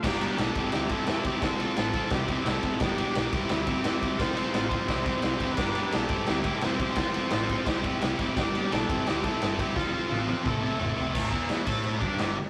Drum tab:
CC |x-------|--------|--------|--------|
RD |-xxxxxxx|xxxxxxxx|xxxxxxxx|xxxxxxxx|
SD |o-o-o-o-|o-o-o-o-|o-o-o-o-|o-o-o-o-|
T1 |--------|--------|--------|--------|
T2 |--------|--------|--------|--------|
FT |--------|--------|--------|--------|
BD |o--o-o-o|o--ooo-o|o--o-o-o|o--ooo-o|

CC |x-------|--------|--------|--------|
RD |-xxxxxxx|xxxxxxxx|xxxxxxxx|--------|
SD |o-o-o-o-|o-o-o-o-|o-o-o-o-|o-------|
T1 |--------|--------|--------|--oo----|
T2 |--------|--------|--------|----o---|
FT |--------|--------|--------|------oo|
BD |o--o-o-o|o--ooo-o|o--o-o-o|o---o---|

CC |x-xxx-x-|
RD |--------|
SD |--o---o-|
T1 |--------|
T2 |--------|
FT |--------|
BD |oo-o-o--|